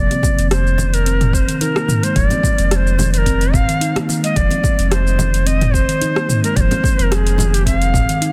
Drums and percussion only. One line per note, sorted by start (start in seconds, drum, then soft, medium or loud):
0.11 closed hi-hat soft
0.11 muted conga medium
0.11 shaker soft
0.23 kick loud
0.23 high conga medium
0.23 low conga medium
0.23 shaker medium
0.39 closed hi-hat soft
0.39 shaker soft
0.51 cross-stick medium
0.51 closed hi-hat medium
0.51 shaker soft
0.67 shaker soft
0.78 muted conga medium
0.78 high conga medium
0.78 low conga medium
0.78 shaker medium
0.94 closed hi-hat soft
0.94 shaker soft
1.06 closed hi-hat medium
1.06 shaker soft
1.21 closed hi-hat soft
1.21 mid tom medium
1.21 muted conga soft
1.21 shaker soft
1.33 kick loud
1.33 shaker medium
1.49 closed hi-hat soft
1.49 shaker soft
1.61 closed hi-hat medium
1.61 high conga medium
1.61 shaker soft
1.76 cross-stick medium
1.76 shaker soft
1.88 mid tom medium
1.88 high conga medium
1.88 shaker medium
2.03 closed hi-hat soft
2.03 shaker soft
2.16 kick loud
2.16 closed hi-hat medium
2.16 mid tom medium
2.16 shaker soft
2.30 closed hi-hat soft
2.30 muted conga medium
2.30 low conga medium
2.30 shaker soft
2.43 kick loud
2.43 high conga medium
2.43 low conga medium
2.43 shaker medium
2.58 closed hi-hat soft
2.58 shaker soft
2.71 cross-stick medium
2.71 closed hi-hat medium
2.71 shaker soft
2.87 shaker soft
2.98 muted conga medium
2.98 high conga medium
2.98 low conga medium
2.98 shaker medium
3.14 closed hi-hat soft
3.14 shaker soft
3.26 kick medium
3.26 closed hi-hat medium
3.26 shaker soft
3.41 closed hi-hat soft
3.41 shaker soft
3.53 kick loud
3.53 mid tom medium
3.53 muted conga soft
3.53 high conga medium
3.53 shaker medium
3.69 closed hi-hat soft
3.69 shaker soft
3.81 closed hi-hat medium
3.81 shaker soft
3.96 cross-stick medium
3.96 closed hi-hat soft
3.96 high conga medium
3.96 shaker soft
4.09 muted conga medium
4.09 shaker medium
4.24 closed hi-hat soft
4.24 shaker soft
4.36 kick loud
4.36 closed hi-hat medium
4.36 shaker soft
4.50 closed hi-hat soft
4.50 muted conga medium
4.50 shaker soft
4.63 kick loud
4.63 high conga medium
4.63 low conga medium
4.63 shaker medium
4.79 closed hi-hat soft
4.79 shaker soft
4.92 cross-stick medium
4.92 closed hi-hat medium
4.92 shaker soft
5.07 shaker soft
5.19 muted conga medium
5.19 high conga medium
5.19 low conga medium
5.19 shaker medium
5.34 closed hi-hat soft
5.34 shaker soft
5.47 closed hi-hat medium
5.47 shaker soft
5.61 closed hi-hat soft
5.61 mid tom medium
5.61 muted conga medium
5.61 shaker soft
5.74 kick loud
5.74 shaker medium
5.89 closed hi-hat soft
5.89 shaker soft
6.01 closed hi-hat medium
6.01 high conga medium
6.01 shaker soft
6.16 cross-stick medium
6.16 shaker soft
6.29 mid tom medium
6.29 high conga medium
6.29 shaker medium
6.44 closed hi-hat soft
6.44 shaker soft
6.56 kick loud
6.56 closed hi-hat medium
6.56 mid tom medium
6.56 shaker soft
6.71 closed hi-hat soft
6.71 muted conga medium
6.71 low conga medium
6.71 shaker soft
6.84 kick loud
6.84 high conga medium
6.84 low conga medium
6.84 shaker medium
6.99 closed hi-hat soft
6.99 shaker soft
7.12 cross-stick medium
7.12 closed hi-hat medium
7.12 shaker soft
7.27 closed hi-hat soft
7.27 shaker soft
7.38 muted conga medium
7.38 high conga medium
7.38 low conga medium
7.38 shaker medium
7.54 closed hi-hat soft
7.54 shaker soft
7.66 kick medium
7.66 closed hi-hat medium
7.66 shaker soft
7.82 closed hi-hat soft
7.82 shaker soft
7.94 kick loud
7.94 mid tom medium
7.94 muted conga soft
7.94 high conga medium
7.94 shaker medium
8.09 closed hi-hat soft
8.09 shaker soft
8.22 closed hi-hat medium
8.22 shaker soft